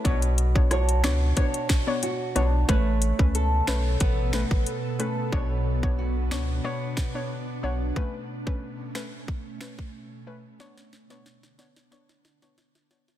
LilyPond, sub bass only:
\new Staff \with { instrumentName = "Sub bass" } { \clef bass \time 4/4 \key b \minor \tempo 4 = 91 b,,4. cis,8 r4. b,,8 | a,,8. cis,8. b,,8 a,,8. a,,16 r4 | b,,4. cis,8 r4. b,,8 | r1 |
r1 | }